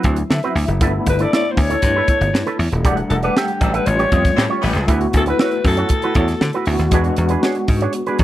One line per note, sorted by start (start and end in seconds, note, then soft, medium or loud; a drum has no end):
0.00 0.77 F#3 medium
0.00 0.77 B3 medium
0.00 0.78 C4 medium
0.00 0.78 E4 medium
0.00 closed hi-hat medium
0.04 0.22 D2 medium
0.04 0.15 C4 medium
0.04 0.16 F#4 medium
0.04 0.17 C5 medium
0.04 kick medium
0.16 muted clean electric guitar stroke soft
0.16 closed hi-hat soft
0.30 0.39 D3 medium
0.30 0.77 E5 medium
0.30 muted clean electric guitar stroke soft
0.30 snare loud
0.43 0.55 C4 medium
0.43 0.55 F#4 medium
0.43 0.56 B4 medium
0.43 closed hi-hat soft
0.55 0.64 D2 medium
0.55 muted clean electric guitar stroke soft
0.55 snare soft
0.55 open hi-hat medium
0.68 0.81 F#1 medium
0.68 muted clean electric guitar stroke soft
0.68 closed hi-hat soft
0.80 0.98 G1 medium
0.80 2.80 A3 medium
0.80 2.81 B3 medium
0.80 2.81 D4 medium
0.80 0.95 E4 medium
0.80 2.81 E4 medium
0.80 0.95 A4 medium
0.80 0.93 B4 medium
0.80 kick loud
0.80 closed hi-hat loud
0.95 muted clean electric guitar stroke soft
1.06 1.24 G1 loud
1.06 1.24 B4 medium
1.06 muted clean electric guitar stroke soft
1.06 kick medium
1.06 closed hi-hat medium
1.19 1.31 E4 medium
1.19 1.31 A4 medium
1.19 1.30 B4 medium
1.19 1.34 D5 medium
1.19 closed hi-hat soft
1.33 1.46 E4 medium
1.33 1.46 A4 medium
1.33 1.46 C#5 medium
1.33 1.53 D5 loud
1.33 snare loud
1.46 muted clean electric guitar stroke soft
1.51 1.62 C5 medium
1.57 1.75 D2 medium
1.57 2.61 C#5 loud
1.57 muted clean electric guitar stroke soft
1.57 kick medium
1.57 open hi-hat medium
1.70 1.82 E4 medium
1.70 1.81 A4 medium
1.70 1.81 C#5 medium
1.70 closed hi-hat medium
1.82 2.00 G2 loud
1.82 muted clean electric guitar stroke soft
1.82 kick medium
1.82 closed hi-hat medium
1.96 2.08 E4 medium
1.96 2.09 A4 medium
1.96 2.10 B4 medium
2.08 2.20 E4 medium
2.08 2.20 A4 medium
2.08 2.21 C#5 medium
2.08 kick medium
2.08 closed hi-hat medium
2.21 2.30 G1 medium
2.21 muted clean electric guitar stroke soft
2.21 closed hi-hat soft
2.33 2.42 G2 medium
2.33 muted clean electric guitar stroke soft
2.33 snare loud
2.46 2.58 E4 medium
2.46 2.59 A4 medium
2.46 2.59 B4 medium
2.46 closed hi-hat soft
2.59 2.68 E2 medium
2.59 open hi-hat medium
2.72 2.85 D#1 medium
2.72 muted clean electric guitar stroke soft
2.72 closed hi-hat soft
2.84 3.02 E1 loud
2.84 3.84 G3 medium
2.84 3.85 A3 medium
2.84 3.85 D4 medium
2.84 2.99 G4 medium
2.84 2.97 A4 medium
2.84 2.95 D5 medium
2.84 3.86 F#5 medium
2.84 kick medium
2.84 closed hi-hat medium
2.97 muted clean electric guitar stroke medium
2.97 closed hi-hat soft
3.10 3.28 E1 medium
3.10 3.16 A4 medium
3.10 muted clean electric guitar stroke soft
3.10 closed hi-hat medium
3.23 3.35 G4 soft
3.23 3.35 A4 medium
3.23 3.39 B4 medium
3.23 3.34 D5 medium
3.23 closed hi-hat soft
3.36 3.50 G4 medium
3.36 3.76 G4 medium
3.36 3.49 A4 medium
3.36 3.48 E5 medium
3.36 snare loud
3.48 muted clean electric guitar stroke soft
3.48 closed hi-hat soft
3.61 3.78 A1 medium
3.61 3.72 F#3 medium
3.61 3.72 D4 medium
3.61 3.72 A4 medium
3.61 muted clean electric guitar stroke soft
3.61 kick medium
3.61 closed hi-hat medium
3.74 3.86 G4 soft
3.74 3.85 A4 medium
3.74 3.88 B4 medium
3.74 3.85 E5 medium
3.74 closed hi-hat medium
3.86 4.04 A1 medium
3.86 4.86 G3 medium
3.86 4.86 A3 medium
3.86 4.87 C#4 soft
3.86 4.87 F4 medium
3.86 4.63 C#5 loud
3.86 muted clean electric guitar stroke soft
3.86 closed hi-hat medium
3.99 4.10 F4 medium
3.99 4.11 G4 medium
3.99 4.13 C#5 medium
3.99 closed hi-hat soft
4.12 4.30 F2 medium
4.12 4.23 F4 medium
4.12 4.23 G4 medium
4.12 4.24 D#5 medium
4.12 kick medium
4.12 closed hi-hat medium
4.25 kick medium
4.25 snare soft
4.25 closed hi-hat soft
4.37 4.46 A2 loud
4.37 4.45 C#3 medium
4.37 4.45 C4 medium
4.37 4.45 G4 medium
4.37 muted clean electric guitar stroke soft
4.37 snare loud
4.50 4.63 F4 medium
4.50 4.63 G4 medium
4.50 4.64 C#5 medium
4.61 4.72 A1 medium
4.61 4.95 E3 medium
4.61 4.95 B3 medium
4.61 4.95 G4 medium
4.61 muted clean electric guitar stroke soft
4.61 snare soft
4.61 open hi-hat medium
4.75 4.85 C#2 medium
4.75 muted clean electric guitar stroke soft
4.75 snare soft
4.75 closed hi-hat soft
4.87 5.06 D2 medium
4.87 6.63 A3 medium
4.87 6.63 B3 medium
4.87 6.63 E4 medium
4.87 5.03 E4 medium
4.87 6.64 F#4 medium
4.87 5.02 F#4 medium
4.87 5.00 B4 medium
4.87 kick medium
4.87 closed hi-hat medium
5.01 muted clean electric guitar stroke soft
5.01 closed hi-hat soft
5.13 5.31 D2 medium
5.13 5.22 A4 medium
5.13 muted clean electric guitar stroke soft
5.13 kick medium
5.13 closed hi-hat medium
5.26 5.38 E4 medium
5.26 5.38 F#4 medium
5.26 5.38 B4 medium
5.26 5.40 B4 loud
5.26 closed hi-hat soft
5.39 5.54 E4 medium
5.39 5.52 F#4 medium
5.39 5.65 B4 loud
5.39 5.52 C#5 medium
5.39 snare loud
5.51 muted clean electric guitar stroke soft
5.51 closed hi-hat soft
5.64 5.82 F#2 medium
5.64 6.64 A4 medium
5.64 muted clean electric guitar stroke soft
5.64 kick medium
5.64 open hi-hat medium
5.77 5.89 E4 medium
5.77 5.89 F#4 medium
5.77 5.89 C#5 medium
5.77 closed hi-hat soft
5.89 muted clean electric guitar stroke soft
5.89 kick medium
5.89 closed hi-hat medium
6.02 6.15 E4 medium
6.02 6.16 F#4 medium
6.02 6.17 B4 medium
6.02 closed hi-hat soft
6.15 6.33 E2 medium
6.15 6.27 E4 medium
6.15 6.27 F#4 medium
6.15 6.28 C#5 medium
6.15 kick medium
6.15 closed hi-hat medium
6.28 muted clean electric guitar stroke soft
6.28 snare soft
6.28 closed hi-hat soft
6.41 6.50 D3 loud
6.41 muted clean electric guitar stroke soft
6.41 snare loud
6.53 6.66 E4 medium
6.53 6.67 F#4 medium
6.53 6.68 B4 medium
6.53 closed hi-hat soft
6.66 6.76 D2 medium
6.66 6.92 A3 medium
6.66 6.91 B3 medium
6.66 6.93 E4 soft
6.66 6.93 F#4 medium
6.66 open hi-hat medium
6.79 6.88 D#2 medium
6.79 muted clean electric guitar stroke medium
6.79 snare soft
6.79 closed hi-hat soft
6.91 7.10 E2 medium
6.91 8.24 G#3 medium
6.91 8.24 B3 medium
6.91 7.07 D4 medium
6.91 8.24 D4 medium
6.91 8.24 F#4 medium
6.91 7.06 G#4 medium
6.91 7.05 B4 medium
6.91 kick loud
6.91 closed hi-hat medium
7.04 muted clean electric guitar stroke soft
7.04 closed hi-hat soft
7.16 7.35 E2 medium
7.16 muted clean electric guitar stroke soft
7.16 closed hi-hat medium
7.29 7.42 D4 medium
7.29 7.42 G#4 medium
7.29 7.41 B4 medium
7.29 closed hi-hat soft
7.43 7.57 D4 medium
7.43 7.57 G#4 medium
7.43 7.57 C#5 medium
7.43 snare loud
7.55 muted clean electric guitar stroke soft
7.55 closed hi-hat soft
7.68 7.86 G#2 medium
7.68 muted clean electric guitar stroke soft
7.68 kick medium
7.68 open hi-hat medium
7.81 7.94 D4 medium
7.81 7.93 G#4 medium
7.81 7.93 C#5 medium
7.81 closed hi-hat medium
7.93 muted clean electric guitar stroke soft
7.93 closed hi-hat medium
8.06 8.18 D4 medium
8.06 8.19 G#4 medium
8.06 8.21 B4 medium
8.06 closed hi-hat soft
8.19 8.24 E2 loud
8.19 8.24 D4 medium
8.19 8.24 G#4 medium
8.19 kick medium
8.19 closed hi-hat medium